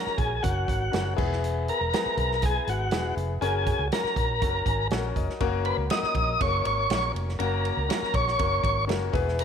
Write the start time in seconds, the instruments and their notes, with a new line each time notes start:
Already playing: grand piano C#4 F#4 A#4, tonewheel organ A#4
0.07 muted fingered electric bass stroke, snare
0.18 fingered electric bass A#1, tonewheel organ G#4, kick, closed hi-hat
0.43 fingered electric bass F#1, grand piano C#4 F#4 A#4, tonewheel organ F#4, kick, closed hi-hat
0.68 fingered electric bass G#1, kick, closed hi-hat
0.91 fingered electric bass F#1, grand piano C#4 F#4 A#4, snare, closed hi-hat
1.16 fingered electric bass E1, grand piano B3 E4 G#4, kick, crash
1.32 snare
1.44 closed hi-hat
1.68 tonewheel organ A#4, closed hi-hat
1.81 fingered electric bass E1
1.93 grand piano B3 E4 G#4, snare, closed hi-hat
2.06 muted fingered electric bass stroke
2.17 fingered electric bass B1, kick, closed hi-hat
2.31 snare
2.42 grand piano B3 E4 G#4, tonewheel organ G#4, kick, closed hi-hat
2.67 fingered electric bass G#1, tonewheel organ F#4, closed hi-hat
2.91 fingered electric bass E1, grand piano B3 E4 G#4, snare, closed hi-hat
3.17 fingered electric bass F1, closed hi-hat
3.41 fingered electric bass F#1, grand piano C#4 F#4 A#4, tonewheel organ G#4, closed hi-hat
3.67 kick, closed hi-hat
3.79 fingered electric bass C#2
3.92 grand piano C#4 F#4 A#4, tonewheel organ A#4, snare, closed hi-hat
4.04 muted fingered electric bass stroke, snare
4.16 fingered electric bass A#1, kick, closed hi-hat
4.42 fingered electric bass F#1, grand piano C#4 F#4 A4, kick, closed hi-hat
4.48 grand piano A#4
4.66 fingered electric bass G#1, grand piano G#5, kick, closed hi-hat
4.90 fingered electric bass A#1, grand piano C#4 F#4 A4 F#5, snare, closed hi-hat
4.98 grand piano A#4
5.16 fingered electric bass F1, grand piano D#5, kick, closed hi-hat
5.29 snare
5.40 fingered electric bass F#1, grand piano A#3 C#4 F#4 A#4, kick, ride
5.65 tonewheel organ B4, ride
5.77 fingered electric bass C#2
5.90 grand piano A#3 C#4 F#4 A4, tonewheel organ D#5, snare, ride
5.97 grand piano A#4
6.03 muted fingered electric bass stroke, snare
6.14 fingered electric bass A#1, kick, ride
6.40 fingered electric bass F#1, grand piano A#3 C#4 F#4 G#4, tonewheel organ C#5, kick, ride
6.47 grand piano A#4
6.65 fingered electric bass G#1, tonewheel organ C#5, ride
6.90 fingered electric bass A#1, grand piano A#3 C#4 F#4 A#4, snare, ride
7.15 fingered electric bass F1, ride
7.29 snare
7.39 fingered electric bass F#1, grand piano A#3 C#4 F#4 A#4, tonewheel organ A#4, ride
7.65 ride
7.77 fingered electric bass C#2
7.89 grand piano A#3 C#4 F#4 A#4, snare, ride
8.02 muted fingered electric bass stroke, snare
8.14 fingered electric bass A#1, tonewheel organ C#5, kick, ride
8.28 snare
8.39 fingered electric bass F#1, grand piano A#3 C#4 F#4 A#4, kick, ride
8.64 fingered electric bass G#1, kick, ride
8.87 fingered electric bass F#1, grand piano A#3 C#4 F#4 A#4, snare, ride
9.13 fingered electric bass E1, grand piano B3 E4 G#4 B4, kick, open hi-hat, ride
9.28 snare
9.39 tonewheel organ A#4, hi-hat pedal, ride